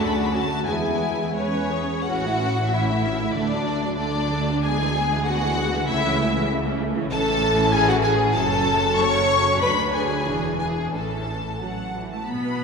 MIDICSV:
0, 0, Header, 1, 6, 480
1, 0, Start_track
1, 0, Key_signature, 3, "major"
1, 0, Tempo, 680272
1, 481, Time_signature, 2, 2, 24, 8
1, 1925, Tempo, 633580
1, 3845, Tempo, 619195
1, 6725, Tempo, 646552
1, 7685, Tempo, 669643
1, 9382, End_track
2, 0, Start_track
2, 0, Title_t, "Violin section"
2, 0, Program_c, 0, 48
2, 57, Note_on_c, 0, 83, 91
2, 113, Note_on_c, 0, 81, 86
2, 121, Note_off_c, 0, 83, 0
2, 171, Note_on_c, 0, 83, 89
2, 179, Note_off_c, 0, 81, 0
2, 226, Note_on_c, 0, 81, 107
2, 238, Note_off_c, 0, 83, 0
2, 464, Note_on_c, 0, 80, 87
2, 472, Note_off_c, 0, 81, 0
2, 946, Note_off_c, 0, 80, 0
2, 953, Note_on_c, 0, 73, 97
2, 1428, Note_off_c, 0, 73, 0
2, 1449, Note_on_c, 0, 78, 97
2, 1910, Note_on_c, 0, 76, 90
2, 1918, Note_off_c, 0, 78, 0
2, 2386, Note_on_c, 0, 74, 93
2, 2398, Note_off_c, 0, 76, 0
2, 2855, Note_off_c, 0, 74, 0
2, 2864, Note_on_c, 0, 74, 101
2, 3352, Note_off_c, 0, 74, 0
2, 3365, Note_on_c, 0, 80, 105
2, 3833, Note_off_c, 0, 80, 0
2, 3839, Note_on_c, 0, 78, 116
2, 4313, Note_off_c, 0, 78, 0
2, 4323, Note_on_c, 0, 76, 117
2, 4796, Note_off_c, 0, 76, 0
2, 5281, Note_on_c, 0, 81, 127
2, 5726, Note_off_c, 0, 81, 0
2, 5747, Note_on_c, 0, 80, 127
2, 5872, Note_off_c, 0, 80, 0
2, 5886, Note_on_c, 0, 78, 116
2, 5933, Note_off_c, 0, 78, 0
2, 5992, Note_on_c, 0, 80, 127
2, 6054, Note_off_c, 0, 80, 0
2, 6233, Note_on_c, 0, 81, 127
2, 6712, Note_off_c, 0, 81, 0
2, 6718, Note_on_c, 0, 85, 127
2, 7192, Note_on_c, 0, 83, 114
2, 7197, Note_off_c, 0, 85, 0
2, 7433, Note_off_c, 0, 83, 0
2, 7436, Note_on_c, 0, 80, 91
2, 7907, Note_off_c, 0, 80, 0
2, 7915, Note_on_c, 0, 80, 88
2, 7973, Note_off_c, 0, 80, 0
2, 8172, Note_on_c, 0, 81, 78
2, 8886, Note_off_c, 0, 81, 0
2, 9382, End_track
3, 0, Start_track
3, 0, Title_t, "Violin section"
3, 0, Program_c, 1, 48
3, 0, Note_on_c, 1, 62, 75
3, 0, Note_on_c, 1, 66, 72
3, 232, Note_off_c, 1, 62, 0
3, 239, Note_on_c, 1, 61, 72
3, 295, Note_off_c, 1, 61, 0
3, 476, Note_off_c, 1, 66, 0
3, 489, Note_on_c, 1, 64, 66
3, 493, Note_on_c, 1, 59, 66
3, 961, Note_off_c, 1, 59, 0
3, 965, Note_on_c, 1, 61, 75
3, 968, Note_off_c, 1, 64, 0
3, 1434, Note_off_c, 1, 61, 0
3, 1469, Note_on_c, 1, 66, 94
3, 1919, Note_off_c, 1, 66, 0
3, 1932, Note_on_c, 1, 64, 77
3, 2410, Note_off_c, 1, 64, 0
3, 2416, Note_on_c, 1, 62, 84
3, 2868, Note_off_c, 1, 62, 0
3, 2877, Note_on_c, 1, 62, 86
3, 3359, Note_off_c, 1, 62, 0
3, 3369, Note_on_c, 1, 68, 86
3, 3844, Note_off_c, 1, 68, 0
3, 3850, Note_on_c, 1, 66, 96
3, 4321, Note_on_c, 1, 64, 89
3, 4329, Note_off_c, 1, 66, 0
3, 4795, Note_off_c, 1, 64, 0
3, 5287, Note_on_c, 1, 69, 107
3, 5730, Note_off_c, 1, 69, 0
3, 5766, Note_on_c, 1, 68, 110
3, 5880, Note_off_c, 1, 68, 0
3, 5883, Note_on_c, 1, 66, 99
3, 6001, Note_off_c, 1, 66, 0
3, 6003, Note_on_c, 1, 68, 105
3, 6238, Note_off_c, 1, 68, 0
3, 6242, Note_on_c, 1, 69, 106
3, 6727, Note_off_c, 1, 69, 0
3, 6740, Note_on_c, 1, 73, 109
3, 7199, Note_on_c, 1, 71, 89
3, 7208, Note_off_c, 1, 73, 0
3, 7258, Note_off_c, 1, 71, 0
3, 7446, Note_on_c, 1, 68, 83
3, 7917, Note_off_c, 1, 68, 0
3, 7938, Note_on_c, 1, 68, 78
3, 8169, Note_off_c, 1, 68, 0
3, 8169, Note_on_c, 1, 69, 62
3, 8644, Note_on_c, 1, 78, 62
3, 8647, Note_off_c, 1, 69, 0
3, 8986, Note_off_c, 1, 78, 0
3, 9014, Note_on_c, 1, 81, 59
3, 9122, Note_on_c, 1, 83, 71
3, 9133, Note_off_c, 1, 81, 0
3, 9382, Note_off_c, 1, 83, 0
3, 9382, End_track
4, 0, Start_track
4, 0, Title_t, "Viola section"
4, 0, Program_c, 2, 48
4, 234, Note_on_c, 2, 66, 75
4, 473, Note_off_c, 2, 66, 0
4, 479, Note_on_c, 2, 68, 68
4, 915, Note_off_c, 2, 68, 0
4, 963, Note_on_c, 2, 71, 76
4, 1196, Note_off_c, 2, 71, 0
4, 1218, Note_on_c, 2, 68, 72
4, 1464, Note_off_c, 2, 68, 0
4, 1472, Note_on_c, 2, 61, 69
4, 1473, Note_on_c, 2, 52, 64
4, 1577, Note_off_c, 2, 61, 0
4, 1578, Note_off_c, 2, 52, 0
4, 1584, Note_on_c, 2, 57, 61
4, 1584, Note_on_c, 2, 64, 67
4, 1698, Note_off_c, 2, 57, 0
4, 1698, Note_off_c, 2, 64, 0
4, 1709, Note_on_c, 2, 52, 56
4, 1710, Note_on_c, 2, 61, 59
4, 1814, Note_on_c, 2, 57, 60
4, 1817, Note_off_c, 2, 52, 0
4, 1818, Note_off_c, 2, 61, 0
4, 1820, Note_on_c, 2, 64, 58
4, 1926, Note_off_c, 2, 57, 0
4, 1929, Note_off_c, 2, 64, 0
4, 1941, Note_on_c, 2, 52, 62
4, 1942, Note_on_c, 2, 61, 61
4, 2046, Note_off_c, 2, 52, 0
4, 2046, Note_off_c, 2, 61, 0
4, 2049, Note_on_c, 2, 57, 61
4, 2053, Note_on_c, 2, 64, 60
4, 2168, Note_off_c, 2, 57, 0
4, 2170, Note_off_c, 2, 64, 0
4, 2170, Note_on_c, 2, 52, 65
4, 2172, Note_on_c, 2, 61, 65
4, 2288, Note_off_c, 2, 52, 0
4, 2289, Note_off_c, 2, 61, 0
4, 2293, Note_on_c, 2, 64, 57
4, 2296, Note_on_c, 2, 57, 58
4, 2403, Note_off_c, 2, 57, 0
4, 2409, Note_off_c, 2, 64, 0
4, 2412, Note_on_c, 2, 57, 62
4, 2415, Note_off_c, 2, 57, 0
4, 2415, Note_on_c, 2, 57, 62
4, 2521, Note_off_c, 2, 57, 0
4, 2527, Note_on_c, 2, 54, 58
4, 2532, Note_on_c, 2, 62, 62
4, 2644, Note_off_c, 2, 54, 0
4, 2647, Note_off_c, 2, 62, 0
4, 2647, Note_on_c, 2, 57, 60
4, 2649, Note_off_c, 2, 57, 0
4, 2649, Note_on_c, 2, 57, 60
4, 2761, Note_on_c, 2, 62, 62
4, 2764, Note_on_c, 2, 54, 58
4, 2765, Note_off_c, 2, 57, 0
4, 2878, Note_on_c, 2, 57, 65
4, 2879, Note_off_c, 2, 57, 0
4, 2879, Note_on_c, 2, 57, 67
4, 2880, Note_off_c, 2, 62, 0
4, 2881, Note_off_c, 2, 54, 0
4, 2992, Note_off_c, 2, 57, 0
4, 3003, Note_on_c, 2, 62, 65
4, 3006, Note_on_c, 2, 54, 66
4, 3125, Note_off_c, 2, 62, 0
4, 3125, Note_on_c, 2, 57, 71
4, 3127, Note_off_c, 2, 54, 0
4, 3128, Note_off_c, 2, 57, 0
4, 3128, Note_on_c, 2, 57, 69
4, 3250, Note_off_c, 2, 57, 0
4, 3255, Note_on_c, 2, 54, 60
4, 3260, Note_on_c, 2, 62, 58
4, 3374, Note_off_c, 2, 54, 0
4, 3376, Note_off_c, 2, 62, 0
4, 3378, Note_on_c, 2, 56, 73
4, 3383, Note_on_c, 2, 59, 65
4, 3482, Note_off_c, 2, 56, 0
4, 3489, Note_off_c, 2, 59, 0
4, 3491, Note_on_c, 2, 56, 69
4, 3499, Note_on_c, 2, 52, 66
4, 3600, Note_off_c, 2, 56, 0
4, 3609, Note_on_c, 2, 56, 63
4, 3611, Note_on_c, 2, 59, 66
4, 3613, Note_off_c, 2, 52, 0
4, 3714, Note_off_c, 2, 56, 0
4, 3723, Note_on_c, 2, 56, 67
4, 3727, Note_on_c, 2, 52, 69
4, 3728, Note_off_c, 2, 59, 0
4, 3838, Note_off_c, 2, 56, 0
4, 3844, Note_on_c, 2, 59, 73
4, 3845, Note_off_c, 2, 52, 0
4, 3847, Note_on_c, 2, 56, 68
4, 3955, Note_off_c, 2, 56, 0
4, 3957, Note_off_c, 2, 59, 0
4, 3965, Note_on_c, 2, 56, 70
4, 3967, Note_on_c, 2, 52, 72
4, 4079, Note_off_c, 2, 56, 0
4, 4085, Note_on_c, 2, 59, 72
4, 4086, Note_off_c, 2, 52, 0
4, 4088, Note_on_c, 2, 56, 75
4, 4203, Note_off_c, 2, 56, 0
4, 4205, Note_off_c, 2, 59, 0
4, 4212, Note_on_c, 2, 56, 67
4, 4213, Note_on_c, 2, 52, 66
4, 4324, Note_on_c, 2, 57, 69
4, 4325, Note_off_c, 2, 57, 0
4, 4325, Note_on_c, 2, 57, 73
4, 4329, Note_off_c, 2, 56, 0
4, 4330, Note_off_c, 2, 52, 0
4, 4437, Note_off_c, 2, 57, 0
4, 4444, Note_on_c, 2, 52, 76
4, 4447, Note_on_c, 2, 61, 74
4, 4566, Note_off_c, 2, 52, 0
4, 4568, Note_off_c, 2, 61, 0
4, 4576, Note_on_c, 2, 57, 68
4, 4578, Note_off_c, 2, 57, 0
4, 4578, Note_on_c, 2, 57, 70
4, 4691, Note_on_c, 2, 52, 69
4, 4692, Note_on_c, 2, 61, 69
4, 4693, Note_off_c, 2, 57, 0
4, 4809, Note_off_c, 2, 52, 0
4, 4810, Note_off_c, 2, 61, 0
4, 4812, Note_on_c, 2, 57, 74
4, 4814, Note_off_c, 2, 57, 0
4, 4814, Note_on_c, 2, 57, 71
4, 4922, Note_off_c, 2, 57, 0
4, 4929, Note_on_c, 2, 61, 79
4, 4931, Note_on_c, 2, 52, 76
4, 5047, Note_off_c, 2, 61, 0
4, 5049, Note_off_c, 2, 52, 0
4, 5058, Note_on_c, 2, 57, 82
4, 5059, Note_off_c, 2, 57, 0
4, 5059, Note_on_c, 2, 57, 85
4, 5169, Note_on_c, 2, 61, 77
4, 5170, Note_on_c, 2, 52, 76
4, 5172, Note_off_c, 2, 57, 0
4, 5275, Note_off_c, 2, 61, 0
4, 5280, Note_off_c, 2, 52, 0
4, 5285, Note_on_c, 2, 61, 91
4, 5289, Note_on_c, 2, 52, 98
4, 6209, Note_off_c, 2, 61, 0
4, 6211, Note_off_c, 2, 52, 0
4, 6229, Note_on_c, 2, 54, 87
4, 6232, Note_on_c, 2, 61, 86
4, 6705, Note_off_c, 2, 61, 0
4, 6708, Note_off_c, 2, 54, 0
4, 6715, Note_on_c, 2, 61, 84
4, 6717, Note_on_c, 2, 54, 80
4, 7186, Note_off_c, 2, 61, 0
4, 7187, Note_off_c, 2, 54, 0
4, 7193, Note_on_c, 2, 62, 84
4, 7196, Note_on_c, 2, 54, 78
4, 7670, Note_off_c, 2, 62, 0
4, 7674, Note_off_c, 2, 54, 0
4, 7678, Note_on_c, 2, 52, 69
4, 7679, Note_on_c, 2, 62, 66
4, 8150, Note_off_c, 2, 52, 0
4, 8154, Note_off_c, 2, 62, 0
4, 8158, Note_on_c, 2, 52, 57
4, 8161, Note_on_c, 2, 61, 58
4, 8594, Note_off_c, 2, 52, 0
4, 8604, Note_off_c, 2, 61, 0
4, 8645, Note_on_c, 2, 54, 65
4, 8703, Note_off_c, 2, 54, 0
4, 8886, Note_on_c, 2, 52, 52
4, 9119, Note_on_c, 2, 59, 77
4, 9124, Note_off_c, 2, 52, 0
4, 9382, Note_off_c, 2, 59, 0
4, 9382, End_track
5, 0, Start_track
5, 0, Title_t, "Cello section"
5, 0, Program_c, 3, 48
5, 0, Note_on_c, 3, 57, 101
5, 480, Note_on_c, 3, 56, 78
5, 481, Note_off_c, 3, 57, 0
5, 954, Note_off_c, 3, 56, 0
5, 1460, Note_on_c, 3, 45, 78
5, 2374, Note_off_c, 3, 45, 0
5, 2404, Note_on_c, 3, 50, 78
5, 4294, Note_off_c, 3, 50, 0
5, 4327, Note_on_c, 3, 49, 89
5, 5267, Note_off_c, 3, 49, 0
5, 5285, Note_on_c, 3, 45, 106
5, 6209, Note_off_c, 3, 45, 0
5, 6250, Note_on_c, 3, 42, 97
5, 7186, Note_off_c, 3, 42, 0
5, 7201, Note_on_c, 3, 38, 85
5, 7676, Note_off_c, 3, 38, 0
5, 7686, Note_on_c, 3, 40, 71
5, 8167, Note_off_c, 3, 40, 0
5, 8170, Note_on_c, 3, 45, 62
5, 8647, Note_off_c, 3, 45, 0
5, 8656, Note_on_c, 3, 54, 67
5, 8993, Note_off_c, 3, 54, 0
5, 9022, Note_on_c, 3, 57, 67
5, 9068, Note_off_c, 3, 57, 0
5, 9135, Note_on_c, 3, 59, 84
5, 9382, Note_off_c, 3, 59, 0
5, 9382, End_track
6, 0, Start_track
6, 0, Title_t, "Double bass section"
6, 0, Program_c, 4, 48
6, 5, Note_on_c, 4, 38, 79
6, 479, Note_on_c, 4, 40, 69
6, 481, Note_off_c, 4, 38, 0
6, 1291, Note_off_c, 4, 40, 0
6, 1463, Note_on_c, 4, 33, 77
6, 2376, Note_off_c, 4, 33, 0
6, 2403, Note_on_c, 4, 38, 77
6, 4294, Note_off_c, 4, 38, 0
6, 4328, Note_on_c, 4, 37, 92
6, 5268, Note_off_c, 4, 37, 0
6, 5289, Note_on_c, 4, 33, 93
6, 6211, Note_off_c, 4, 33, 0
6, 6243, Note_on_c, 4, 30, 97
6, 7183, Note_off_c, 4, 30, 0
6, 7206, Note_on_c, 4, 38, 82
6, 7679, Note_off_c, 4, 38, 0
6, 7687, Note_on_c, 4, 28, 70
6, 8167, Note_off_c, 4, 28, 0
6, 8169, Note_on_c, 4, 33, 62
6, 8972, Note_off_c, 4, 33, 0
6, 9133, Note_on_c, 4, 47, 73
6, 9382, Note_off_c, 4, 47, 0
6, 9382, End_track
0, 0, End_of_file